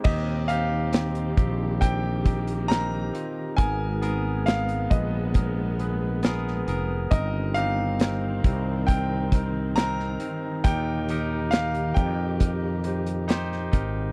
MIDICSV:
0, 0, Header, 1, 6, 480
1, 0, Start_track
1, 0, Key_signature, -3, "major"
1, 0, Tempo, 882353
1, 29, Time_signature, 4, 2, 24, 8
1, 7682, End_track
2, 0, Start_track
2, 0, Title_t, "Grand piano"
2, 0, Program_c, 0, 0
2, 22, Note_on_c, 0, 75, 81
2, 261, Note_on_c, 0, 77, 91
2, 273, Note_off_c, 0, 75, 0
2, 963, Note_off_c, 0, 77, 0
2, 984, Note_on_c, 0, 79, 91
2, 1460, Note_on_c, 0, 82, 100
2, 1481, Note_off_c, 0, 79, 0
2, 1922, Note_off_c, 0, 82, 0
2, 1940, Note_on_c, 0, 80, 93
2, 2426, Note_on_c, 0, 77, 85
2, 2439, Note_off_c, 0, 80, 0
2, 2668, Note_on_c, 0, 75, 72
2, 2675, Note_off_c, 0, 77, 0
2, 3607, Note_off_c, 0, 75, 0
2, 3867, Note_on_c, 0, 75, 85
2, 4104, Note_on_c, 0, 77, 106
2, 4115, Note_off_c, 0, 75, 0
2, 4823, Note_on_c, 0, 79, 85
2, 4848, Note_off_c, 0, 77, 0
2, 5307, Note_on_c, 0, 82, 95
2, 5321, Note_off_c, 0, 79, 0
2, 5788, Note_on_c, 0, 79, 97
2, 5802, Note_off_c, 0, 82, 0
2, 6260, Note_on_c, 0, 77, 90
2, 6283, Note_off_c, 0, 79, 0
2, 6498, Note_on_c, 0, 79, 76
2, 6512, Note_off_c, 0, 77, 0
2, 7441, Note_off_c, 0, 79, 0
2, 7682, End_track
3, 0, Start_track
3, 0, Title_t, "Tine electric piano"
3, 0, Program_c, 1, 4
3, 0, Control_c, 1, 64, 127
3, 24, Note_on_c, 1, 60, 91
3, 28, Note_on_c, 1, 63, 83
3, 30, Note_on_c, 1, 46, 61
3, 34, Note_on_c, 1, 67, 103
3, 37, Control_c, 1, 64, 0
3, 138, Control_c, 1, 64, 127
3, 254, Note_off_c, 1, 60, 0
3, 256, Note_off_c, 1, 63, 0
3, 259, Note_off_c, 1, 67, 0
3, 265, Note_on_c, 1, 60, 92
3, 270, Note_on_c, 1, 63, 84
3, 272, Note_on_c, 1, 67, 101
3, 495, Note_off_c, 1, 60, 0
3, 497, Note_off_c, 1, 63, 0
3, 498, Note_off_c, 1, 67, 0
3, 502, Note_on_c, 1, 60, 67
3, 509, Note_on_c, 1, 63, 63
3, 511, Note_on_c, 1, 67, 80
3, 727, Note_off_c, 1, 46, 0
3, 733, Note_off_c, 1, 60, 0
3, 737, Note_off_c, 1, 63, 0
3, 738, Note_off_c, 1, 67, 0
3, 746, Note_on_c, 1, 60, 74
3, 749, Note_on_c, 1, 63, 64
3, 755, Note_on_c, 1, 67, 81
3, 975, Note_off_c, 1, 60, 0
3, 977, Note_off_c, 1, 63, 0
3, 980, Note_off_c, 1, 67, 0
3, 986, Note_on_c, 1, 60, 76
3, 990, Note_on_c, 1, 63, 64
3, 995, Note_on_c, 1, 67, 75
3, 1212, Note_off_c, 1, 60, 0
3, 1218, Note_off_c, 1, 63, 0
3, 1219, Note_on_c, 1, 60, 65
3, 1220, Note_off_c, 1, 67, 0
3, 1224, Note_on_c, 1, 63, 66
3, 1227, Note_on_c, 1, 67, 76
3, 1452, Note_off_c, 1, 60, 0
3, 1454, Note_off_c, 1, 63, 0
3, 1456, Note_off_c, 1, 67, 0
3, 1463, Note_on_c, 1, 60, 86
3, 1467, Note_on_c, 1, 63, 87
3, 1473, Note_on_c, 1, 70, 107
3, 1694, Note_off_c, 1, 60, 0
3, 1696, Note_off_c, 1, 63, 0
3, 1699, Note_off_c, 1, 70, 0
3, 1705, Note_on_c, 1, 60, 61
3, 1708, Note_on_c, 1, 63, 64
3, 1713, Note_on_c, 1, 65, 77
3, 1935, Note_off_c, 1, 60, 0
3, 1936, Note_off_c, 1, 63, 0
3, 1939, Note_off_c, 1, 65, 0
3, 1944, Note_on_c, 1, 59, 96
3, 1947, Note_on_c, 1, 68, 92
3, 1948, Note_on_c, 1, 44, 61
3, 1948, Note_on_c, 1, 51, 68
3, 1950, Note_on_c, 1, 70, 109
3, 1956, Control_c, 1, 64, 0
3, 2063, Control_c, 1, 64, 127
3, 2174, Note_off_c, 1, 59, 0
3, 2176, Note_off_c, 1, 68, 0
3, 2177, Note_off_c, 1, 70, 0
3, 2186, Note_on_c, 1, 59, 95
3, 2189, Note_on_c, 1, 68, 85
3, 2194, Note_on_c, 1, 70, 107
3, 2415, Note_off_c, 1, 59, 0
3, 2417, Note_off_c, 1, 68, 0
3, 2419, Note_off_c, 1, 70, 0
3, 2428, Note_on_c, 1, 59, 69
3, 2432, Note_on_c, 1, 68, 67
3, 2438, Note_on_c, 1, 70, 78
3, 2647, Note_off_c, 1, 44, 0
3, 2647, Note_off_c, 1, 51, 0
3, 2656, Note_off_c, 1, 59, 0
3, 2658, Note_off_c, 1, 68, 0
3, 2661, Note_off_c, 1, 70, 0
3, 2667, Note_on_c, 1, 59, 75
3, 2673, Note_on_c, 1, 68, 68
3, 2676, Note_on_c, 1, 71, 83
3, 2896, Note_off_c, 1, 59, 0
3, 2899, Note_off_c, 1, 68, 0
3, 2900, Note_off_c, 1, 71, 0
3, 2907, Note_on_c, 1, 59, 65
3, 2908, Note_on_c, 1, 68, 65
3, 2915, Note_on_c, 1, 70, 77
3, 3136, Note_off_c, 1, 59, 0
3, 3136, Note_off_c, 1, 68, 0
3, 3140, Note_off_c, 1, 70, 0
3, 3152, Note_on_c, 1, 59, 71
3, 3153, Note_on_c, 1, 68, 65
3, 3158, Note_on_c, 1, 71, 81
3, 3379, Note_off_c, 1, 59, 0
3, 3379, Note_off_c, 1, 68, 0
3, 3381, Note_off_c, 1, 71, 0
3, 3390, Note_on_c, 1, 59, 102
3, 3396, Note_on_c, 1, 68, 102
3, 3399, Note_on_c, 1, 70, 123
3, 3617, Note_off_c, 1, 59, 0
3, 3621, Note_off_c, 1, 68, 0
3, 3622, Note_off_c, 1, 70, 0
3, 3629, Note_on_c, 1, 59, 77
3, 3634, Note_on_c, 1, 68, 71
3, 3639, Note_on_c, 1, 70, 91
3, 3857, Note_off_c, 1, 59, 0
3, 3859, Note_off_c, 1, 68, 0
3, 3862, Note_off_c, 1, 70, 0
3, 3872, Note_on_c, 1, 60, 99
3, 3875, Note_on_c, 1, 55, 66
3, 3875, Note_on_c, 1, 63, 92
3, 3876, Control_c, 1, 64, 0
3, 3877, Note_on_c, 1, 43, 62
3, 3878, Note_on_c, 1, 70, 108
3, 3984, Control_c, 1, 64, 127
3, 4098, Note_off_c, 1, 60, 0
3, 4100, Note_off_c, 1, 63, 0
3, 4101, Note_off_c, 1, 70, 0
3, 4115, Note_on_c, 1, 60, 90
3, 4117, Note_on_c, 1, 63, 91
3, 4124, Note_on_c, 1, 67, 105
3, 4340, Note_off_c, 1, 60, 0
3, 4341, Note_off_c, 1, 63, 0
3, 4344, Note_off_c, 1, 67, 0
3, 4353, Note_on_c, 1, 60, 74
3, 4360, Note_on_c, 1, 63, 65
3, 4363, Note_on_c, 1, 70, 88
3, 4570, Note_off_c, 1, 55, 0
3, 4571, Note_off_c, 1, 43, 0
3, 4579, Note_off_c, 1, 60, 0
3, 4582, Note_off_c, 1, 63, 0
3, 4584, Note_off_c, 1, 70, 0
3, 4597, Note_on_c, 1, 60, 73
3, 4601, Note_on_c, 1, 63, 68
3, 4605, Note_on_c, 1, 70, 80
3, 4821, Note_off_c, 1, 60, 0
3, 4823, Note_off_c, 1, 63, 0
3, 4825, Note_off_c, 1, 70, 0
3, 4840, Note_on_c, 1, 60, 69
3, 4843, Note_on_c, 1, 63, 71
3, 4846, Note_on_c, 1, 70, 80
3, 5062, Note_off_c, 1, 60, 0
3, 5064, Note_off_c, 1, 63, 0
3, 5065, Note_off_c, 1, 70, 0
3, 5076, Note_on_c, 1, 60, 73
3, 5080, Note_on_c, 1, 63, 66
3, 5086, Note_on_c, 1, 70, 82
3, 5301, Note_off_c, 1, 60, 0
3, 5302, Note_off_c, 1, 63, 0
3, 5305, Note_off_c, 1, 70, 0
3, 5313, Note_on_c, 1, 60, 92
3, 5315, Note_on_c, 1, 63, 82
3, 5320, Note_on_c, 1, 70, 109
3, 5539, Note_off_c, 1, 60, 0
3, 5540, Note_off_c, 1, 63, 0
3, 5542, Note_off_c, 1, 70, 0
3, 5550, Note_on_c, 1, 60, 67
3, 5554, Note_on_c, 1, 63, 60
3, 5559, Note_on_c, 1, 70, 72
3, 5777, Note_off_c, 1, 60, 0
3, 5780, Note_off_c, 1, 63, 0
3, 5782, Note_off_c, 1, 70, 0
3, 5795, Control_c, 1, 64, 0
3, 5795, Note_on_c, 1, 63, 103
3, 5798, Note_on_c, 1, 46, 71
3, 5799, Note_on_c, 1, 67, 94
3, 5801, Note_on_c, 1, 70, 107
3, 5899, Control_c, 1, 64, 127
3, 6020, Note_off_c, 1, 63, 0
3, 6022, Note_off_c, 1, 67, 0
3, 6023, Note_off_c, 1, 70, 0
3, 6038, Note_on_c, 1, 63, 96
3, 6041, Note_on_c, 1, 67, 87
3, 6045, Note_on_c, 1, 70, 106
3, 6261, Note_off_c, 1, 63, 0
3, 6263, Note_off_c, 1, 67, 0
3, 6265, Note_off_c, 1, 70, 0
3, 6274, Note_on_c, 1, 63, 72
3, 6278, Note_on_c, 1, 67, 71
3, 6281, Note_on_c, 1, 70, 76
3, 6492, Note_off_c, 1, 46, 0
3, 6499, Note_off_c, 1, 63, 0
3, 6501, Note_off_c, 1, 67, 0
3, 6503, Note_off_c, 1, 70, 0
3, 6510, Note_on_c, 1, 63, 77
3, 6513, Note_on_c, 1, 67, 69
3, 6518, Note_on_c, 1, 70, 76
3, 6738, Note_off_c, 1, 63, 0
3, 6739, Note_off_c, 1, 67, 0
3, 6741, Note_off_c, 1, 70, 0
3, 6745, Note_on_c, 1, 63, 68
3, 6751, Note_on_c, 1, 67, 63
3, 6752, Note_on_c, 1, 70, 70
3, 6975, Note_off_c, 1, 63, 0
3, 6978, Note_off_c, 1, 67, 0
3, 6978, Note_off_c, 1, 70, 0
3, 6989, Note_on_c, 1, 63, 73
3, 6992, Note_on_c, 1, 67, 64
3, 6997, Note_on_c, 1, 72, 75
3, 7217, Note_off_c, 1, 63, 0
3, 7218, Note_off_c, 1, 67, 0
3, 7221, Note_off_c, 1, 72, 0
3, 7224, Note_on_c, 1, 63, 111
3, 7229, Note_on_c, 1, 67, 106
3, 7234, Note_on_c, 1, 72, 121
3, 7454, Note_off_c, 1, 63, 0
3, 7457, Note_off_c, 1, 67, 0
3, 7459, Note_off_c, 1, 72, 0
3, 7462, Note_on_c, 1, 63, 81
3, 7466, Note_on_c, 1, 67, 72
3, 7468, Note_on_c, 1, 70, 83
3, 7682, Note_off_c, 1, 63, 0
3, 7682, Note_off_c, 1, 67, 0
3, 7682, Note_off_c, 1, 70, 0
3, 7682, End_track
4, 0, Start_track
4, 0, Title_t, "String section"
4, 0, Program_c, 2, 48
4, 31, Note_on_c, 2, 51, 75
4, 32, Note_on_c, 2, 60, 66
4, 32, Note_on_c, 2, 67, 80
4, 981, Note_off_c, 2, 60, 0
4, 981, Note_on_c, 2, 58, 75
4, 1931, Note_off_c, 2, 51, 0
4, 1931, Note_off_c, 2, 67, 0
4, 1935, Note_off_c, 2, 58, 0
4, 1956, Note_on_c, 2, 59, 88
4, 1957, Note_on_c, 2, 56, 75
4, 3853, Note_off_c, 2, 59, 0
4, 3854, Note_off_c, 2, 56, 0
4, 3878, Note_on_c, 2, 51, 83
4, 3879, Note_on_c, 2, 60, 83
4, 5775, Note_off_c, 2, 60, 0
4, 5794, Note_on_c, 2, 67, 85
4, 7682, Note_off_c, 2, 51, 0
4, 7682, Note_off_c, 2, 67, 0
4, 7682, End_track
5, 0, Start_track
5, 0, Title_t, "Fretless electric bass"
5, 0, Program_c, 3, 35
5, 28, Note_on_c, 3, 39, 96
5, 727, Note_off_c, 3, 39, 0
5, 748, Note_on_c, 3, 34, 97
5, 1687, Note_off_c, 3, 34, 0
5, 1948, Note_on_c, 3, 32, 95
5, 2647, Note_off_c, 3, 32, 0
5, 2673, Note_on_c, 3, 34, 95
5, 3609, Note_off_c, 3, 34, 0
5, 3633, Note_on_c, 3, 29, 86
5, 3854, Note_off_c, 3, 29, 0
5, 3871, Note_on_c, 3, 31, 99
5, 4568, Note_off_c, 3, 31, 0
5, 4593, Note_on_c, 3, 36, 100
5, 5529, Note_off_c, 3, 36, 0
5, 5792, Note_on_c, 3, 39, 98
5, 6488, Note_off_c, 3, 39, 0
5, 6512, Note_on_c, 3, 41, 88
5, 7449, Note_off_c, 3, 41, 0
5, 7473, Note_on_c, 3, 32, 85
5, 7682, Note_off_c, 3, 32, 0
5, 7682, End_track
6, 0, Start_track
6, 0, Title_t, "Drums"
6, 24, Note_on_c, 9, 49, 89
6, 27, Note_on_c, 9, 36, 104
6, 78, Note_off_c, 9, 49, 0
6, 82, Note_off_c, 9, 36, 0
6, 266, Note_on_c, 9, 42, 76
6, 321, Note_off_c, 9, 42, 0
6, 504, Note_on_c, 9, 42, 83
6, 514, Note_on_c, 9, 38, 107
6, 558, Note_off_c, 9, 42, 0
6, 568, Note_off_c, 9, 38, 0
6, 626, Note_on_c, 9, 42, 52
6, 680, Note_off_c, 9, 42, 0
6, 748, Note_on_c, 9, 36, 103
6, 748, Note_on_c, 9, 42, 73
6, 802, Note_off_c, 9, 36, 0
6, 802, Note_off_c, 9, 42, 0
6, 987, Note_on_c, 9, 42, 92
6, 989, Note_on_c, 9, 36, 82
6, 1042, Note_off_c, 9, 42, 0
6, 1043, Note_off_c, 9, 36, 0
6, 1227, Note_on_c, 9, 36, 82
6, 1229, Note_on_c, 9, 42, 69
6, 1282, Note_off_c, 9, 36, 0
6, 1283, Note_off_c, 9, 42, 0
6, 1346, Note_on_c, 9, 42, 56
6, 1401, Note_off_c, 9, 42, 0
6, 1467, Note_on_c, 9, 42, 82
6, 1477, Note_on_c, 9, 38, 107
6, 1522, Note_off_c, 9, 42, 0
6, 1532, Note_off_c, 9, 38, 0
6, 1712, Note_on_c, 9, 42, 77
6, 1766, Note_off_c, 9, 42, 0
6, 1949, Note_on_c, 9, 36, 101
6, 1949, Note_on_c, 9, 42, 94
6, 2003, Note_off_c, 9, 42, 0
6, 2004, Note_off_c, 9, 36, 0
6, 2189, Note_on_c, 9, 42, 74
6, 2244, Note_off_c, 9, 42, 0
6, 2429, Note_on_c, 9, 42, 76
6, 2439, Note_on_c, 9, 38, 117
6, 2484, Note_off_c, 9, 42, 0
6, 2493, Note_off_c, 9, 38, 0
6, 2550, Note_on_c, 9, 42, 54
6, 2604, Note_off_c, 9, 42, 0
6, 2671, Note_on_c, 9, 36, 99
6, 2672, Note_on_c, 9, 42, 69
6, 2726, Note_off_c, 9, 36, 0
6, 2726, Note_off_c, 9, 42, 0
6, 2906, Note_on_c, 9, 42, 88
6, 2911, Note_on_c, 9, 36, 96
6, 2961, Note_off_c, 9, 42, 0
6, 2965, Note_off_c, 9, 36, 0
6, 3153, Note_on_c, 9, 42, 70
6, 3207, Note_off_c, 9, 42, 0
6, 3388, Note_on_c, 9, 42, 75
6, 3398, Note_on_c, 9, 38, 106
6, 3442, Note_off_c, 9, 42, 0
6, 3452, Note_off_c, 9, 38, 0
6, 3523, Note_on_c, 9, 38, 36
6, 3577, Note_off_c, 9, 38, 0
6, 3632, Note_on_c, 9, 42, 74
6, 3687, Note_off_c, 9, 42, 0
6, 3868, Note_on_c, 9, 42, 95
6, 3871, Note_on_c, 9, 36, 114
6, 3923, Note_off_c, 9, 42, 0
6, 3925, Note_off_c, 9, 36, 0
6, 4111, Note_on_c, 9, 42, 75
6, 4165, Note_off_c, 9, 42, 0
6, 4349, Note_on_c, 9, 42, 83
6, 4359, Note_on_c, 9, 38, 121
6, 4404, Note_off_c, 9, 42, 0
6, 4413, Note_off_c, 9, 38, 0
6, 4593, Note_on_c, 9, 36, 101
6, 4593, Note_on_c, 9, 42, 71
6, 4647, Note_off_c, 9, 42, 0
6, 4648, Note_off_c, 9, 36, 0
6, 4829, Note_on_c, 9, 42, 88
6, 4833, Note_on_c, 9, 36, 86
6, 4884, Note_off_c, 9, 42, 0
6, 4887, Note_off_c, 9, 36, 0
6, 5070, Note_on_c, 9, 36, 84
6, 5070, Note_on_c, 9, 42, 71
6, 5125, Note_off_c, 9, 36, 0
6, 5125, Note_off_c, 9, 42, 0
6, 5309, Note_on_c, 9, 42, 81
6, 5319, Note_on_c, 9, 38, 105
6, 5363, Note_off_c, 9, 42, 0
6, 5373, Note_off_c, 9, 38, 0
6, 5437, Note_on_c, 9, 38, 36
6, 5492, Note_off_c, 9, 38, 0
6, 5548, Note_on_c, 9, 42, 75
6, 5602, Note_off_c, 9, 42, 0
6, 5790, Note_on_c, 9, 42, 100
6, 5791, Note_on_c, 9, 36, 109
6, 5844, Note_off_c, 9, 42, 0
6, 5846, Note_off_c, 9, 36, 0
6, 6031, Note_on_c, 9, 42, 71
6, 6085, Note_off_c, 9, 42, 0
6, 6266, Note_on_c, 9, 42, 79
6, 6275, Note_on_c, 9, 38, 119
6, 6320, Note_off_c, 9, 42, 0
6, 6330, Note_off_c, 9, 38, 0
6, 6389, Note_on_c, 9, 42, 54
6, 6444, Note_off_c, 9, 42, 0
6, 6507, Note_on_c, 9, 42, 66
6, 6511, Note_on_c, 9, 36, 95
6, 6562, Note_off_c, 9, 42, 0
6, 6565, Note_off_c, 9, 36, 0
6, 6747, Note_on_c, 9, 42, 97
6, 6749, Note_on_c, 9, 36, 84
6, 6801, Note_off_c, 9, 42, 0
6, 6804, Note_off_c, 9, 36, 0
6, 6985, Note_on_c, 9, 42, 67
6, 7039, Note_off_c, 9, 42, 0
6, 7107, Note_on_c, 9, 42, 56
6, 7162, Note_off_c, 9, 42, 0
6, 7228, Note_on_c, 9, 42, 81
6, 7238, Note_on_c, 9, 38, 100
6, 7282, Note_off_c, 9, 42, 0
6, 7292, Note_off_c, 9, 38, 0
6, 7355, Note_on_c, 9, 38, 34
6, 7409, Note_off_c, 9, 38, 0
6, 7468, Note_on_c, 9, 42, 77
6, 7470, Note_on_c, 9, 36, 88
6, 7523, Note_off_c, 9, 42, 0
6, 7525, Note_off_c, 9, 36, 0
6, 7682, End_track
0, 0, End_of_file